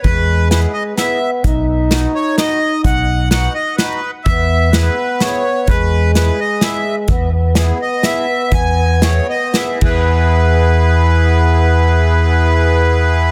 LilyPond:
<<
  \new Staff \with { instrumentName = "Accordion" } { \time 3/4 \key e \major \tempo 4 = 127 b'4 b'8 dis''8 e''8. r16 | r4. cis''8 dis''4 | fis''4 fis''8 dis''8 b'8. r16 | e''4 b'4 cis''4 |
b'4 b'8 dis''8 e''8. r16 | r4. dis''8 e''4 | gis''4 cis''8 dis''8 e''8 b'8~ | b'2.~ |
b'2. | }
  \new Staff \with { instrumentName = "Accordion" } { \time 3/4 \key e \major r4 <b e' gis'>8 r8 <b e' gis'>8 r8 | r4 <b dis' fis'>8 r8 <b dis' fis'>8 r8 | r4 <b dis' fis'>8 r8 <b dis' fis'>8 r8 | r4 <b e' gis'>8 r8 <b e' gis'>8 r8 |
r4 <b e' gis'>8 r8 <b e' gis'>8 r8 | r4 <b e' gis'>8 r8 <b e' gis'>8 r8 | r4 <b e' gis'>8 r8 <b e' gis'>8 <b e' gis'>8~ | <b e' gis'>2.~ |
<b e' gis'>2. | }
  \new Staff \with { instrumentName = "Euphonium" } { \time 3/4 \key e \major gis2 b4 | dis'2.~ | dis'2~ dis'8 r8 | b4 b2 |
gis2. | b8 b2~ b8~ | b2~ b8 b8~ | b2.~ |
b2. | }
  \new Staff \with { instrumentName = "Fingered electric bass" } { \clef bass \time 3/4 \key e \major e,2 r4 | b,,2 r4 | b,,2 r4 | e,2 r4 |
e,2 r4 | e,2 r4 | e,2 r8 e,8~ | e,2.~ |
e,2. | }
  \new DrumStaff \with { instrumentName = "Drums" } \drummode { \time 3/4 <hh bd>4 <hh sn>4 <hh sn>4 | <hh bd>4 <hh sn>4 <hh sn>4 | <hh bd>4 <hh sn>4 <hh sn>4 | <hh bd>4 <hh sn>4 <hh sn>4 |
<hh bd>4 <hh sn>4 <hh sn>4 | <hh bd>4 <hh sn>4 <hh sn>4 | <hh bd>4 <hh sn>4 <hh sn>8 <cymc bd>8 | r4 r4 r4 |
r4 r4 r4 | }
>>